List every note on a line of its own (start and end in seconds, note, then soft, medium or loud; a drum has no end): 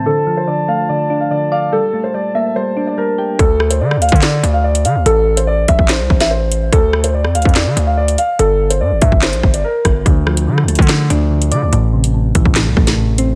0.00 1.69 A3 medium
0.00 3.35 A5 medium
0.06 0.46 D3 medium
0.06 1.71 F3 medium
0.06 3.36 D4 medium
0.06 0.35 A4 medium
0.27 1.31 F3 medium
0.37 0.46 C5 medium
0.48 0.88 D3 medium
0.48 0.65 D5 medium
0.68 1.73 A3 medium
0.68 0.86 F5 medium
0.89 1.30 D3 medium
0.89 1.19 D5 medium
1.10 1.73 D4 medium
1.20 1.29 F5 medium
1.31 1.73 D3 medium
1.31 1.48 D5 medium
1.52 1.73 D5 medium
1.52 1.69 F5 medium
1.72 3.38 A#2 medium
1.72 2.13 G3 medium
1.72 3.38 G3 medium
1.72 2.02 A4 medium
1.93 2.98 A3 medium
2.04 2.13 C5 medium
2.14 2.55 G3 medium
2.14 2.32 D5 medium
2.35 3.39 A#3 medium
2.35 2.52 E5 medium
2.56 2.96 G3 medium
2.56 2.85 C5 medium
2.77 3.39 D4 medium
2.87 2.96 D5 medium
2.97 3.39 G3 medium
2.97 3.37 A#4 medium
3.18 3.39 G4 medium
3.39 3.82 D2 loud
3.39 3.69 A4 loud
3.39 kick loud
3.39 closed hi-hat medium
3.60 cross-stick medium
3.70 3.79 C5 medium
3.70 closed hi-hat medium
3.81 3.98 D3 loud
3.81 3.98 D5 medium
3.91 cross-stick medium
3.97 4.11 D2 loud
4.02 4.19 F5 medium
4.02 closed hi-hat medium
4.09 4.42 D3 loud
4.09 kick medium
4.09 closed hi-hat medium
4.16 closed hi-hat soft
4.22 4.52 D5 medium
4.22 snare loud
4.22 clap medium
4.22 closed hi-hat medium
4.43 4.87 D2 loud
4.43 closed hi-hat medium
4.54 4.63 F5 medium
4.64 4.82 D5 medium
4.75 closed hi-hat medium
4.85 4.97 D3 loud
4.85 5.03 F5 medium
4.85 closed hi-hat medium
4.95 5.05 D2 loud
5.06 5.66 A1 loud
5.06 5.35 A4 loud
5.06 closed hi-hat medium
5.37 5.46 C5 medium
5.37 closed hi-hat medium
5.47 5.65 D5 medium
5.68 5.78 A1 loud
5.68 5.86 E5 medium
5.68 kick medium
5.68 closed hi-hat medium
5.79 6.01 A1 loud
5.79 kick medium
5.88 6.19 C5 medium
5.88 snare loud
5.88 clap medium
5.88 closed hi-hat medium
6.00 6.10 C2 loud
6.10 6.70 A1 loud
6.10 kick loud
6.20 6.29 E5 medium
6.20 snare medium
6.20 closed hi-hat medium
6.31 6.70 C5 medium
6.52 closed hi-hat medium
6.73 7.26 D2 loud
6.73 7.02 A4 loud
6.73 kick loud
6.73 closed hi-hat medium
6.93 cross-stick medium
7.04 7.13 C5 medium
7.04 closed hi-hat medium
7.14 7.32 D5 medium
7.25 7.37 F2 loud
7.25 cross-stick medium
7.35 7.45 D2 loud
7.35 7.53 F5 medium
7.35 closed hi-hat medium
7.42 7.68 F2 loud
7.42 kick medium
7.42 closed hi-hat medium
7.49 closed hi-hat soft
7.55 7.85 D5 medium
7.55 snare loud
7.55 clap medium
7.55 closed hi-hat medium
7.66 7.76 D3 loud
7.77 8.17 D2 loud
7.77 closed hi-hat medium
7.87 7.96 F5 medium
7.97 8.15 D5 medium
8.08 closed hi-hat medium
8.18 8.36 F5 medium
8.18 closed hi-hat medium
8.39 8.82 G1 loud
8.39 8.69 A4 loud
8.39 closed hi-hat medium
8.70 8.79 C5 medium
8.70 closed hi-hat medium
8.81 8.93 G2 loud
8.81 8.98 D5 medium
8.91 9.01 G1 loud
9.02 9.11 G2 loud
9.02 9.19 E5 medium
9.02 kick medium
9.02 closed hi-hat medium
9.12 9.34 G1 loud
9.12 kick medium
9.22 9.52 C5 loud
9.22 snare loud
9.22 clap medium
9.22 closed hi-hat medium
9.33 9.43 A#1 loud
9.33 closed hi-hat soft
9.43 9.63 G1 loud
9.43 kick loud
9.54 9.63 D5 medium
9.54 closed hi-hat medium
9.64 10.03 A#4 medium
9.85 10.05 G1 loud
9.85 kick medium
9.85 cross-stick medium
9.85 closed hi-hat medium
10.06 10.49 D2 loud
10.06 10.46 D3 loud
10.06 kick loud
10.06 closed hi-hat medium
10.27 11.31 F3 medium
10.27 cross-stick medium
10.37 closed hi-hat medium
10.47 10.88 D3 medium
10.47 10.65 D3 loud
10.58 cross-stick medium
10.63 10.78 D2 loud
10.68 11.73 A3 medium
10.68 closed hi-hat medium
10.75 11.09 D3 loud
10.75 kick medium
10.75 closed hi-hat medium
10.82 closed hi-hat soft
10.88 11.30 D3 medium
10.88 snare loud
10.88 clap medium
10.88 closed hi-hat medium
11.10 11.53 D2 loud
11.10 11.73 D4 medium
11.10 closed hi-hat medium
11.31 11.72 D3 medium
11.42 closed hi-hat medium
11.52 11.64 D3 loud
11.52 11.73 D5 medium
11.52 closed hi-hat medium
11.62 11.72 D2 loud
11.72 12.33 A1 loud
11.72 12.13 A2 loud
11.72 closed hi-hat medium
11.93 12.98 C3 medium
12.04 closed hi-hat medium
12.14 12.55 A2 medium
12.35 12.45 A1 loud
12.35 13.35 E3 medium
12.35 kick medium
12.35 closed hi-hat medium
12.45 12.68 A1 loud
12.45 kick medium
12.55 12.96 A2 medium
12.55 snare loud
12.55 clap medium
12.55 closed hi-hat medium
12.66 12.76 C2 loud
12.77 13.35 A1 loud
12.77 13.35 A3 medium
12.77 kick loud
12.87 snare medium
12.87 closed hi-hat medium
12.98 13.35 A2 medium
13.18 13.35 C4 medium
13.18 closed hi-hat medium